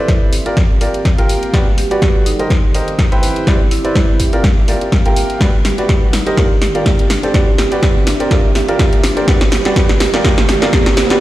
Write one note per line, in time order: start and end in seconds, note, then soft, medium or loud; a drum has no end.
0.00 1.54 C4 medium
0.00 0.31 E4 medium
0.00 1.83 G4 medium
0.00 0.33 A4 medium
0.00 0.31 B4 medium
0.00 0.31 C5 medium
0.00 0.31 D5 medium
0.00 0.33 E5 medium
0.08 kick loud
0.08 snare medium
0.08 closed hi-hat medium
0.33 1.54 A#3 medium
0.33 open hi-hat loud
0.46 0.56 F4 medium
0.46 0.56 G4 medium
0.46 0.56 A#4 medium
0.46 0.56 D5 medium
0.46 closed hi-hat medium
0.57 kick loud
0.57 snare medium
0.57 closed hi-hat medium
0.81 1.15 F4 medium
0.81 1.15 G4 medium
0.81 1.15 A#4 medium
0.81 1.15 D5 medium
0.81 open hi-hat loud
0.88 1.54 F5 medium
0.94 closed hi-hat soft
1.05 kick loud
1.05 snare medium
1.05 closed hi-hat medium
1.18 1.51 F4 loud
1.18 1.51 G4 medium
1.18 1.51 A#4 medium
1.18 1.51 G5 loud
1.18 closed hi-hat medium
1.29 open hi-hat loud
1.43 closed hi-hat soft
1.54 2.26 G3 medium
1.54 1.65 F#4 medium
1.54 1.65 G4 medium
1.54 1.65 B4 medium
1.54 1.65 D5 medium
1.54 kick loud
1.54 snare medium
1.54 closed hi-hat medium
1.78 1.86 G4 medium
1.78 open hi-hat loud
1.87 2.25 F#4 medium
1.87 2.25 G4 medium
1.87 1.98 G4 medium
1.87 2.66 A4 medium
1.87 2.25 B4 medium
1.87 2.66 D5 medium
1.87 2.25 D5 medium
1.87 2.26 F#5 medium
1.91 closed hi-hat medium
2.02 kick loud
2.02 snare medium
2.02 closed hi-hat medium
2.26 3.23 D#3 medium
2.26 2.37 D#4 medium
2.26 open hi-hat loud
2.39 2.49 G4 medium
2.39 2.49 A#4 medium
2.39 2.49 C5 medium
2.39 2.49 D#5 medium
2.39 closed hi-hat soft
2.46 5.41 G4 medium
2.50 kick loud
2.50 snare medium
2.50 closed hi-hat medium
2.70 5.41 C4 medium
2.70 3.23 F5 medium
2.75 3.09 G4 medium
2.75 3.09 A#4 medium
2.75 3.09 C5 medium
2.75 3.09 D#5 medium
2.75 open hi-hat loud
2.88 closed hi-hat soft
2.99 kick loud
2.99 snare medium
2.99 closed hi-hat medium
3.12 3.45 E4 medium
3.12 3.45 B4 medium
3.12 3.45 C5 medium
3.12 3.45 G5 loud
3.12 closed hi-hat medium
3.23 open hi-hat loud
3.36 closed hi-hat soft
3.47 3.59 E4 medium
3.47 3.62 G4 medium
3.47 3.59 B4 medium
3.47 3.59 C5 medium
3.47 3.59 D5 medium
3.47 kick loud
3.47 snare medium
3.47 closed hi-hat medium
3.67 6.13 E5 medium
3.71 3.80 E4 medium
3.71 open hi-hat loud
3.84 4.18 E4 medium
3.84 3.92 E4 medium
3.84 4.18 B4 medium
3.84 4.18 C5 medium
3.84 4.18 D5 medium
3.84 closed hi-hat soft
3.95 kick loud
3.95 snare medium
3.95 closed hi-hat medium
4.20 5.41 A#3 medium
4.20 kick medium
4.20 open hi-hat loud
4.33 4.43 F4 medium
4.33 4.43 G4 medium
4.33 4.43 A#4 medium
4.33 4.43 D5 medium
4.33 closed hi-hat soft
4.44 kick loud
4.44 snare medium
4.44 closed hi-hat medium
4.68 5.02 F4 medium
4.68 5.02 G4 medium
4.68 5.02 A#4 medium
4.68 5.02 D5 medium
4.68 open hi-hat loud
4.81 closed hi-hat soft
4.92 kick loud
4.92 snare medium
4.92 closed hi-hat medium
5.06 5.38 F4 medium
5.06 5.38 G4 medium
5.06 5.38 A#4 medium
5.06 5.38 G5 loud
5.06 closed hi-hat medium
5.16 open hi-hat loud
5.30 closed hi-hat soft
5.41 6.13 G3 medium
5.41 5.52 F#4 medium
5.41 5.52 G4 medium
5.41 5.52 B4 medium
5.41 5.52 D5 medium
5.41 kick loud
5.41 snare medium
5.41 closed hi-hat medium
5.41 riser medium
5.62 5.73 G4 medium
5.62 6.13 B4 medium
5.62 snare medium
5.62 open hi-hat loud
5.75 6.12 F#4 medium
5.75 5.85 G4 medium
5.75 6.12 G4 medium
5.75 6.12 B4 medium
5.75 6.12 D5 medium
5.75 6.14 F#5 medium
5.75 closed hi-hat soft
5.89 kick loud
5.89 snare medium
5.89 closed hi-hat medium
6.13 7.10 D#3 medium
6.13 6.24 D#4 medium
6.13 snare medium
6.13 open hi-hat loud
6.26 6.36 G4 medium
6.26 6.36 A#4 medium
6.26 6.36 C5 medium
6.26 6.36 D#5 medium
6.26 closed hi-hat medium
6.35 6.49 F4 medium
6.35 9.28 G4 medium
6.35 6.49 A#4 medium
6.35 6.49 D5 medium
6.35 kick loud
6.35 snare medium
6.35 closed hi-hat medium
6.58 9.28 C4 medium
6.58 7.10 F5 medium
6.62 6.70 G4 medium
6.62 snare medium
6.62 open hi-hat loud
6.75 7.09 F4 medium
6.75 7.09 G4 medium
6.75 6.82 G4 medium
6.75 7.09 A#4 medium
6.75 7.09 D5 medium
6.75 closed hi-hat medium
6.86 kick loud
6.86 snare medium
6.86 closed hi-hat medium
6.99 closed hi-hat medium
7.10 7.21 D4 medium
7.10 snare medium
7.10 open hi-hat loud
7.23 7.33 G4 medium
7.23 7.33 A4 medium
7.23 7.33 C5 medium
7.23 7.33 D5 medium
7.23 closed hi-hat soft
7.34 7.46 F#4 medium
7.34 7.46 G4 medium
7.34 7.46 B4 medium
7.34 7.46 D5 medium
7.34 kick loud
7.34 snare medium
7.34 closed hi-hat medium
7.54 10.01 E5 medium
7.58 7.67 G4 medium
7.58 snare medium
7.58 open hi-hat loud
7.72 8.06 F#4 medium
7.72 8.06 G4 medium
7.72 7.79 G4 medium
7.72 8.06 B4 medium
7.72 8.06 D5 medium
7.72 closed hi-hat medium
7.83 kick loud
7.83 snare medium
7.83 closed hi-hat medium
8.07 9.28 A#3 medium
8.07 8.17 D4 medium
8.07 snare medium
8.07 open hi-hat loud
8.20 8.29 G4 medium
8.20 8.29 A#4 medium
8.20 8.29 C5 medium
8.20 8.29 D5 medium
8.20 closed hi-hat medium
8.31 8.43 F4 medium
8.31 8.43 G4 medium
8.31 8.43 A#4 medium
8.31 8.43 D5 medium
8.31 kick loud
8.31 snare medium
8.31 closed hi-hat medium
8.55 8.64 G4 medium
8.55 snare medium
8.55 open hi-hat medium
8.68 9.02 F4 medium
8.68 9.02 G4 medium
8.68 9.02 A#4 medium
8.68 9.02 D5 medium
8.68 closed hi-hat soft
8.79 kick loud
8.79 snare medium
8.79 closed hi-hat medium
8.93 closed hi-hat medium
9.04 9.14 D4 medium
9.04 snare medium
9.04 open hi-hat loud
9.17 9.26 G4 medium
9.17 9.26 A#4 medium
9.17 9.26 C5 medium
9.17 9.26 D5 medium
9.17 closed hi-hat soft
9.28 10.00 G3 medium
9.28 9.39 F#4 medium
9.28 9.39 G4 medium
9.28 9.39 B4 medium
9.28 9.39 D5 medium
9.28 kick loud
9.28 snare medium
9.28 closed hi-hat medium
9.35 10.00 F#4 medium
9.41 snare medium
9.48 10.01 B4 medium
9.52 9.61 G4 medium
9.52 snare medium
9.52 open hi-hat loud
9.65 9.74 F#4 medium
9.65 9.74 G4 medium
9.65 9.72 G4 medium
9.65 9.75 B4 medium
9.65 9.75 D5 loud
9.65 snare medium
9.65 closed hi-hat medium
9.76 9.88 F#4 medium
9.76 9.88 G4 medium
9.76 9.88 B4 medium
9.76 kick loud
9.76 snare medium
9.76 closed hi-hat medium
9.89 snare medium
10.00 10.97 D#3 medium
10.00 10.09 G4 medium
10.00 snare loud
10.00 open hi-hat loud
10.14 10.23 F4 medium
10.14 10.23 G4 medium
10.14 10.23 A#4 medium
10.14 11.20 C5 medium
10.14 10.23 D5 loud
10.14 snare medium
10.14 closed hi-hat medium
10.18 11.20 G4 medium
10.25 10.36 F4 medium
10.25 10.36 G4 medium
10.25 10.36 A#4 medium
10.25 kick loud
10.25 snare loud
10.25 closed hi-hat medium
10.38 snare medium
10.45 10.57 G4 medium
10.45 10.97 F5 medium
10.45 snare medium
10.45 open hi-hat loud
10.62 10.71 F4 medium
10.62 10.71 G4 medium
10.62 10.71 A#4 medium
10.62 10.71 D5 loud
10.62 snare medium
10.62 closed hi-hat medium
10.73 10.85 F4 medium
10.73 10.85 G4 medium
10.73 kick loud
10.73 snare loud
10.73 closed hi-hat medium
10.86 snare medium
10.86 closed hi-hat medium
10.97 11.06 G4 medium
10.97 snare medium
10.97 open hi-hat loud
11.10 11.20 F#4 medium
11.10 11.17 G4 medium
11.10 11.20 G4 medium
11.10 11.20 B4 medium
11.10 11.20 D5 loud
11.10 snare medium
11.10 closed hi-hat medium